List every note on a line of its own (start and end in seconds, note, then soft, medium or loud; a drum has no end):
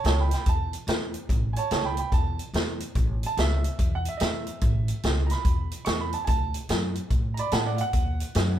0.04 0.32 C#2 medium
0.04 0.19 C#5 medium
0.04 0.20 A5 medium
0.04 snare loud
0.04 closed hi-hat medium
0.20 0.32 G5 medium
0.20 0.33 B5 medium
0.31 0.46 G5 medium
0.31 0.47 B5 medium
0.31 snare soft
0.31 closed hi-hat medium
0.46 0.74 E2 medium
0.46 0.73 A5 medium
0.46 kick loud
0.46 closed hi-hat medium
0.73 closed hi-hat medium
0.87 1.15 E2 medium
0.87 snare loud
0.87 closed hi-hat medium
1.14 closed hi-hat medium
1.29 1.57 A1 medium
1.29 kick loud
1.29 closed hi-hat medium
1.53 1.70 C#5 medium
1.53 1.57 G#5 medium
1.53 closed hi-hat medium
1.59 1.71 A5 medium
1.71 1.99 C#2 medium
1.71 1.84 C#5 medium
1.71 1.85 A5 medium
1.71 snare loud
1.71 closed hi-hat medium
1.85 1.97 G5 medium
1.85 1.98 B5 medium
1.97 2.12 G5 medium
1.97 2.12 B5 medium
1.97 closed hi-hat medium
2.12 2.40 E2 medium
2.12 2.39 A5 medium
2.12 kick loud
2.12 closed hi-hat medium
2.39 closed hi-hat medium
2.53 2.81 E2 medium
2.53 snare loud
2.53 closed hi-hat medium
2.80 closed hi-hat medium
2.95 3.23 A1 medium
2.95 kick loud
2.95 closed hi-hat medium
3.23 3.38 A5 medium
3.23 closed hi-hat medium
3.37 3.65 C#2 medium
3.37 3.92 E5 medium
3.37 snare loud
3.37 closed hi-hat medium
3.64 closed hi-hat medium
3.79 4.06 E2 medium
3.79 kick loud
3.79 closed hi-hat medium
3.95 4.07 F#5 medium
4.05 4.20 E5 medium
4.05 closed hi-hat medium
4.17 4.48 E2 medium
4.17 4.20 D#5 medium
4.17 snare loud
4.17 closed hi-hat medium
4.22 5.01 E5 medium
4.47 closed hi-hat medium
4.61 4.89 A1 medium
4.61 kick loud
4.61 closed hi-hat medium
4.88 closed hi-hat medium
5.03 5.31 C#2 medium
5.03 snare loud
5.03 closed hi-hat medium
5.27 5.30 A#5 medium
5.27 closed hi-hat medium
5.31 5.85 B5 medium
5.31 snare soft
5.45 5.72 E2 medium
5.45 kick loud
5.45 closed hi-hat medium
5.71 closed hi-hat medium
5.85 6.14 E2 medium
5.85 5.99 C#6 medium
5.85 snare loud
5.85 closed hi-hat medium
6.01 6.14 B5 medium
6.13 6.27 A5 medium
6.13 closed hi-hat medium
6.25 6.55 D2 medium
6.25 6.28 G#5 medium
6.25 kick loud
6.25 closed hi-hat medium
6.29 6.54 A5 medium
6.54 closed hi-hat medium
6.69 6.96 F#2 medium
6.69 snare loud
6.69 closed hi-hat medium
6.95 closed hi-hat medium
7.10 7.38 A2 medium
7.10 kick loud
7.10 closed hi-hat medium
7.34 7.38 A#5 medium
7.34 closed hi-hat medium
7.39 7.51 D5 medium
7.39 7.52 B5 medium
7.52 7.79 A2 medium
7.52 7.65 F#5 medium
7.52 7.65 A5 medium
7.52 snare loud
7.52 closed hi-hat medium
7.66 7.79 D5 medium
7.66 7.79 F#5 medium
7.76 7.80 F5 medium
7.76 closed hi-hat medium
7.81 8.59 F#5 loud
7.93 8.21 D#2 medium
7.93 kick loud
7.93 closed hi-hat medium
8.20 closed hi-hat medium
8.35 8.59 F#2 loud
8.35 snare loud
8.35 closed hi-hat medium